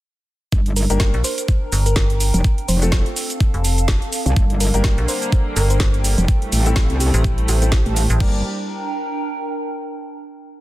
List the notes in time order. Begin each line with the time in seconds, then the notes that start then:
0.52 G1 D4, kick, closed hi-hat, shaker
0.65 A#4, closed hi-hat
0.76 A#4, open hi-hat, shaker
0.90 G1 A#3 D4 G4 A#4, closed hi-hat, shaker
1.00 kick, snare, closed hi-hat, shaker
1.14 A#1, closed hi-hat
1.24 C5, open hi-hat, shaker
1.38 G5 A#5, closed hi-hat, shaker
1.48 kick, closed hi-hat, shaker
1.72 G1, open hi-hat, shaker
1.86 A#4, closed hi-hat, shaker
1.96 G1, kick, snare, closed hi-hat, shaker
2.10 closed hi-hat
2.20 open hi-hat, shaker
2.34 F1, closed hi-hat, shaker
2.44 C4, kick, closed hi-hat, shaker
2.58 closed hi-hat
2.68 F1 A4 C5, open hi-hat, shaker
2.82 A3 C4 F4 A4, closed hi-hat, shaker
2.92 kick, snare, closed hi-hat, shaker
3.06 closed hi-hat
3.10 F5
3.16 open hi-hat, shaker
3.30 A5, closed hi-hat, shaker
3.40 kick, closed hi-hat, shaker
3.54 F1, closed hi-hat
3.64 open hi-hat, shaker
3.78 closed hi-hat, shaker
3.88 kick, snare, closed hi-hat, shaker
4.02 closed hi-hat
4.12 open hi-hat, shaker
4.26 C2, closed hi-hat, shaker
4.36 G1 D3 G3 A#3 D4, kick, closed hi-hat, shaker
4.50 closed hi-hat
4.54 G5
4.60 A#4, open hi-hat, shaker
4.66 A#5
4.74 G1 A#3 D4 G4 A#4, closed hi-hat, shaker
4.84 kick, snare, closed hi-hat, shaker
4.98 A#1, closed hi-hat
5.08 C5, open hi-hat, shaker
5.22 closed hi-hat, shaker
5.32 kick, closed hi-hat, shaker
5.56 G1 A#4, open hi-hat, shaker
5.70 C5, closed hi-hat, shaker
5.80 C5, kick, snare, closed hi-hat, shaker
5.94 closed hi-hat
6.04 open hi-hat, shaker
6.18 F1, closed hi-hat, shaker
6.28 C3 A3 E4, kick, closed hi-hat, shaker
6.42 closed hi-hat
6.52 A1, open hi-hat, shaker
6.60 C5
6.66 C4 E4 G4 A4, closed hi-hat, shaker
6.76 kick, snare, closed hi-hat, shaker
6.90 C2, closed hi-hat
7.00 G4, open hi-hat, shaker
7.14 A1 A5, closed hi-hat, shaker
7.24 kick, closed hi-hat, shaker
7.38 closed hi-hat
7.48 A1 G4, open hi-hat, shaker
7.62 C4 E4 G4 A4, closed hi-hat, shaker
7.72 kick, snare, closed hi-hat, shaker
7.86 A1, closed hi-hat
7.96 open hi-hat, shaker
8.10 A1, closed hi-hat, shaker
8.20 G1 G3 A#3 D4 G4 A#4 D5, kick, crash
8.29 A#4
8.36 G5
8.42 A#5